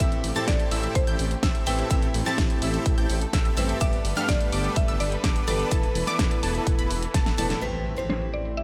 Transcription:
Already playing: G4
0.00 A1 A2 A3 C4 E4 G4 A4 E5 E6, kick, closed hi-hat
0.12 closed hi-hat
0.24 A1, open hi-hat
0.35 A2 A3 C4 E4 G4 A4 A5 A6, closed hi-hat
0.48 A1 D5, kick, snare, closed hi-hat
0.60 closed hi-hat
0.71 A1 C4 E4 G4 A4 E5 E6, open hi-hat
0.83 closed hi-hat
0.95 A1 C5, kick, closed hi-hat
1.07 A1 C4 E4 G4 A4 G5 G6, closed hi-hat
1.19 A1, open hi-hat
1.31 closed hi-hat
1.43 A1 C4 E4 G4 A4 E5 E6, kick, snare, closed hi-hat
1.55 closed hi-hat
1.66 A1 A2 A3 C4 E4 G4 A4 B4 E5 G5 E6, open hi-hat
1.79 closed hi-hat
1.90 A1 A2 A3 C4 E4 G4 A4 E5 E6, kick, closed hi-hat
2.02 closed hi-hat
2.14 A1, open hi-hat
2.25 A2 A3 C4 E4 G4 A4 A5 A6, snare, closed hi-hat
2.38 A1, kick, snare, closed hi-hat
2.50 closed hi-hat
2.62 A1 C4 E4 G4 A4 E5 E6, open hi-hat
2.74 closed hi-hat
2.86 A1, kick, closed hi-hat
2.98 A1 C4 E4 G4 A4 G5 G6, closed hi-hat
3.10 A1, open hi-hat
3.21 closed hi-hat
3.33 A1 C4 E4 G4 A4 E5 E6, kick, snare, closed hi-hat
3.45 closed hi-hat
3.57 A1 G2 A3 C4 E4 G4 A4 B4 E5 E6, open hi-hat
3.69 closed hi-hat
3.80 G1 G2 G3 A3 B3 D4 G4 A4 B4 D5 E5 D6, kick, closed hi-hat
3.93 closed hi-hat
4.05 G1, open hi-hat
4.15 G2 A3 B3 D4 G4 A4 F5 F6, closed hi-hat
4.29 G1 D5, kick, snare, closed hi-hat
4.41 closed hi-hat
4.52 G1 B3 D4 G4 A4 D5 D6, open hi-hat
4.64 closed hi-hat
4.76 G1 E5, kick, closed hi-hat
4.88 G1 B3 D4 G4 A4 E5 E6, closed hi-hat
5.00 G1 D5, open hi-hat
5.12 closed hi-hat
5.24 G1 B3 D4 G4 A4 D5 D6, kick, snare, closed hi-hat
5.36 closed hi-hat
5.47 G1 E3 A3 B3 D4 G4 A4 B4 D5 D6, open hi-hat
5.60 closed hi-hat
5.71 E1 E3 A3 B3 E4 A4 A5, kick, closed hi-hat
5.83 closed hi-hat
5.95 E1, open hi-hat
6.06 E3 A3 B3 E4 A4 D5 D6, snare, closed hi-hat
6.19 E1, kick, snare, closed hi-hat
6.31 closed hi-hat
6.43 E1 B3 E4 A4 A5, open hi-hat
6.55 closed hi-hat
6.67 E1, kick, closed hi-hat
6.79 E1 B3 E4 B4 B5, closed hi-hat
6.90 E1, open hi-hat
7.02 closed hi-hat
7.14 E1 B3 E4 A4 A5, kick, snare, closed hi-hat
7.26 snare, closed hi-hat
7.37 E1 A2 A3 B3 E4 A4 D5 A5, open hi-hat
7.50 snare, closed hi-hat
7.61 A1 A2 A3 C4 E4 G4 B4, closed hi-hat, impact
7.74 closed hi-hat
7.86 closed hi-hat
7.96 A2 A3 C4 E4 G4 C5, closed hi-hat
8.10 C5, snare, closed hi-hat
8.22 closed hi-hat
8.33 D5, closed hi-hat
8.45 closed hi-hat
8.57 E5, closed hi-hat

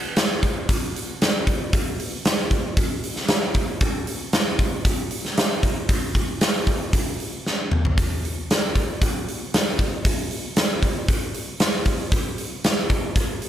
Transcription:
0.16 snare, open hi-hat
0.43 kick, open hi-hat
0.69 kick, open hi-hat
0.96 open hi-hat
1.21 snare, open hi-hat
1.47 kick, open hi-hat
1.73 kick, open hi-hat
2.00 open hi-hat
2.25 snare, open hi-hat
2.51 kick, open hi-hat
2.77 kick, open hi-hat
3.04 open hi-hat
3.16 snare
3.28 snare, open hi-hat
3.54 kick, open hi-hat
3.81 kick, open hi-hat
4.07 open hi-hat
4.33 snare, open hi-hat
4.59 kick, open hi-hat
4.85 kick, open hi-hat
5.11 open hi-hat
5.25 snare
5.37 snare, open hi-hat
5.63 kick, open hi-hat
5.89 kick, open hi-hat
6.15 kick, open hi-hat
6.41 snare, open hi-hat
6.67 kick, open hi-hat
6.93 kick, open hi-hat
7.20 open hi-hat
7.46 snare
7.71 mid tom
7.85 floor tom
7.98 kick, open hi-hat
8.25 open hi-hat
8.50 snare, open hi-hat
8.76 kick, open hi-hat
9.02 kick, open hi-hat
9.28 open hi-hat
9.54 snare, open hi-hat
9.79 kick, open hi-hat
10.05 kick, open hi-hat
10.31 open hi-hat
10.56 snare, open hi-hat
10.83 kick, open hi-hat
11.08 kick, open hi-hat
11.34 open hi-hat
11.60 snare, open hi-hat
11.85 kick, open hi-hat
12.12 kick, open hi-hat
12.38 open hi-hat
12.64 snare, open hi-hat
12.90 kick, open hi-hat
13.16 kick, open hi-hat
13.42 open hi-hat

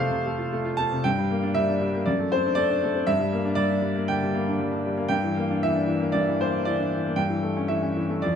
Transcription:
Already playing: F2 C3 F4 C5 D5
0.00 A3 F5
0.11 C3
0.26 A3
0.38 F4
0.52 A3
0.65 F4
0.77 A3 A5
0.92 C3
1.04 G2 G5
1.18 G3
1.31 A#3
1.43 D4
1.54 G3 E5
1.69 D4
1.81 G3
1.95 A#3
2.06 F#2 D5
2.19 A3
2.32 C4 C5
2.46 D4
2.55 A3 D5
2.70 D4
2.83 A3
2.95 C4
3.07 G2 E5
3.19 G3
3.33 A#3
3.45 D4
3.55 G3 D5
3.71 D4
3.82 G3
3.95 A#3
4.08 D3 G5
4.23 G3
4.35 A#3
4.48 D4
4.60 G3
4.72 D4
4.86 G3
4.97 A#3
5.08 G2 G5
5.24 E3
5.37 A#3
5.51 D4
5.63 E3 E5
5.75 D4
5.87 E3
6.00 A#3
6.12 G2 D5
6.27 E3
6.41 A#3 C5
6.52 D4
6.65 E3 D5
6.79 D4
6.93 E3
7.06 A#3
7.16 G2 G5
7.30 E3
7.42 A3
7.56 C#4
7.68 E3 E5
7.82 C#4
7.97 E3
8.09 A3
8.22 F2 D5

